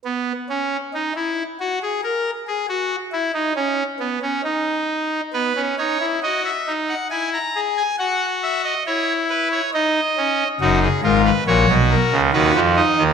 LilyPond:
<<
  \new Staff \with { instrumentName = "Pipe organ" } { \time 3/4 \key b \major \tempo 4 = 69 << { b8 cis'8 dis'16 e'8 fis'16 gis'16 ais'8 gis'16 | fis'8 e'16 dis'16 cis'8 b16 cis'16 dis'4 | b'8 cis''8 dis''16 e''8 fis''16 gis''16 ais''8 gis''16 | fis''8 e''16 dis''16 cis''8 b'16 cis''16 dis''4 |
fis'16 gis'16 ais'16 b'16 cis''8 ais'8 b'8 dis''8 | } \\ { r2. | r2. | b16 cis'16 dis'16 e'16 fis'8 dis'8 e'8 gis'8 | fis'4 e'4 dis'8 cis'8 |
dis'8 eis'8 fis'4 fis'8 dis'8 | } >> }
  \new Staff \with { instrumentName = "Pipe organ" } { \clef bass \time 3/4 \key b \major r2. | r2. | r2. | r2. |
<fis,, fis,>8 <gis,, gis,>8 <ais,, ais,>16 <b,, b,>8 <cis, cis>16 <dis, dis>16 <eis, eis>8 <dis, dis>16 | }
>>